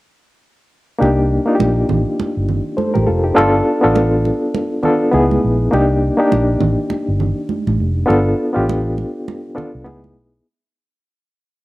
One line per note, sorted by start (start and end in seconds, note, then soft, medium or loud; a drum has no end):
0.98 1.37 C2 medium
0.98 1.41 A#3 medium
0.98 1.41 D4 medium
0.98 1.42 D#4 medium
0.98 1.42 G4 medium
0.98 muted conga soft
1.46 2.50 A#3 medium
1.46 2.48 D4 medium
1.46 2.48 D#4 medium
1.46 1.53 F4 medium
1.55 2.52 G4 medium
1.59 1.82 A#1 medium
1.59 high conga medium
1.89 2.03 A1 medium
1.89 low conga medium
2.20 muted fingered electric bass stroke soft
2.20 muted conga medium
2.37 2.59 G1 medium
2.49 low conga soft
2.77 2.94 A4 soft
2.77 2.93 C5 soft
2.77 high conga medium
2.94 3.05 A1 medium
2.94 3.06 G4 medium
2.94 3.06 A#4 medium
2.94 high conga medium
3.07 3.30 F1 medium
3.07 3.23 F4 medium
3.07 3.23 A4 medium
3.24 3.52 D#4 soft
3.24 3.52 G4 soft
3.34 3.60 G1 medium
3.34 3.76 B3 medium
3.34 3.77 D4 medium
3.34 3.77 F4 medium
3.34 3.77 A4 loud
3.34 muted conga soft
3.81 4.30 A1 medium
3.81 4.74 B3 medium
3.81 4.74 D4 medium
3.81 4.75 F4 medium
3.81 4.75 A4 medium
3.96 high conga medium
4.25 muted conga soft
4.55 muted conga medium
4.82 5.10 B3 medium
4.82 5.13 D4 medium
4.82 5.13 F4 medium
4.82 5.14 A4 medium
4.82 low conga soft
5.11 5.36 C#2 medium
5.11 5.66 B3 medium
5.11 5.66 D#4 medium
5.11 5.67 E4 medium
5.11 5.67 G#4 medium
5.11 high conga soft
5.31 high conga medium
5.44 5.67 A#1 medium
5.71 6.09 C2 medium
5.71 6.13 A#3 medium
5.71 6.13 D4 medium
5.71 6.14 D#4 medium
5.71 6.14 G4 medium
5.71 muted conga soft
6.17 7.22 A#3 medium
6.17 7.23 D4 medium
6.17 7.23 D#4 medium
6.17 7.23 G4 medium
6.32 6.55 A#1 medium
6.32 high conga medium
6.61 6.75 A1 medium
6.61 muted conga soft
6.61 low conga medium
6.90 muted fingered electric bass stroke soft
6.90 muted conga soft
7.08 7.31 G1 medium
7.20 low conga soft
7.49 high conga medium
7.67 7.77 A1 medium
7.67 high conga medium
7.80 8.03 F1 medium
8.06 8.32 G1 medium
8.06 8.49 B3 loud
8.06 8.49 D4 medium
8.06 8.49 F4 medium
8.06 8.50 A4 loud
8.10 muted conga soft
8.53 9.02 A1 medium
8.53 9.46 B3 medium
8.53 9.47 D4 medium
8.53 9.47 F4 medium
8.53 9.48 G4 medium
8.69 high conga medium
8.98 muted conga soft
9.28 muted conga medium
9.55 9.83 B3 medium
9.55 9.85 D4 medium
9.55 9.86 F4 medium
9.55 9.86 A4 medium
9.55 muted fingered electric bass stroke soft
9.55 low conga medium
9.75 9.87 C2 medium
9.84 10.17 C#2 medium
9.84 10.39 B3 medium
9.84 10.40 D#4 medium
9.84 10.40 E4 medium
9.84 10.40 G#4 medium
9.84 high conga medium
10.04 high conga medium
10.17 10.39 B1 medium